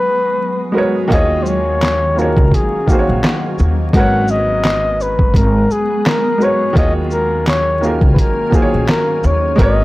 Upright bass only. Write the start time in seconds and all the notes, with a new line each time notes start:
1.11 D#2
2.37 C#2
3.09 A#1
3.60 D#2
3.94 G#1
5.34 G#1
6.77 D#2
8.02 C#2
8.74 A#1
9.24 D#2
9.59 G#1